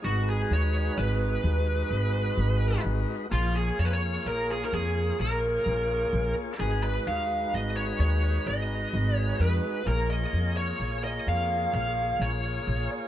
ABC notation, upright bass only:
X:1
M:7/4
L:1/8
Q:1/4=128
K:A#phr
V:1 name="Upright bass" clef=bass
G,,,2 D,,2 G,,,2 D,,2 G,,,2 G,,,2 G,,, z | A,,,2 E,,2 A,,,2 E,,2 A,,,2 A,,,2 A,,, z | G,,,2 D,,2 G,,,2 D,,2 G,,,2 G,,,2 E,, z | A,,,2 E,,2 A,,,2 E,,2 A,,,2 A,,,2 A,,, z |]